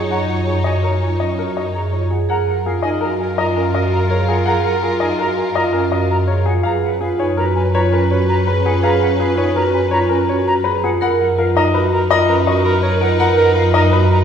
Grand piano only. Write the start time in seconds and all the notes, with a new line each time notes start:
Already playing: G#4
0.11 F#5
0.47 G#4
0.64 D#5
0.83 A#4
1.20 D#5
1.38 A#4
1.57 D#5
1.93 C#5
2.10 G#4
2.30 F#5
2.66 G#4
2.82 D#5
3.01 A#4
3.38 D#5
3.56 A#4
3.75 D#5
4.11 C#5
4.28 G#4
4.46 F#5
4.83 G#4
5.00 D#5
5.19 A#4
5.55 D#5
5.73 A#4
5.92 D#5
6.27 C#5
6.46 G#4
6.63 F5
7.01 G#4
7.19 C#5
7.37 A#4
7.75 C#5
7.93 A#4
8.11 C#5
8.47 B4
8.66 G#4
8.84 F5
9.20 G#4
9.38 C#5
9.56 A#4
9.91 C#5
10.09 A#4
10.29 C#5
10.64 B4
10.84 G#4
11.02 F#5
11.38 A#4
11.57 D#5
11.74 B4
12.11 D#5
12.29 B4
12.47 D#5
12.83 C#5
13.01 A#4
13.20 F#5
13.55 A#4
13.74 D#5
13.92 B4